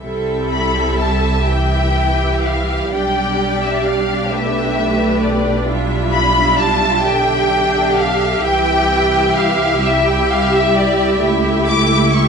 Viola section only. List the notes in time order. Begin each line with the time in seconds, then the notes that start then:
0.03 G3 C4
1.47 E3 E4
2.92 G3 D4
4.32 A3
5.68 G3
7.07 D3 G4
8.43 E3 E4
9.82 G3
11.21 A3 E4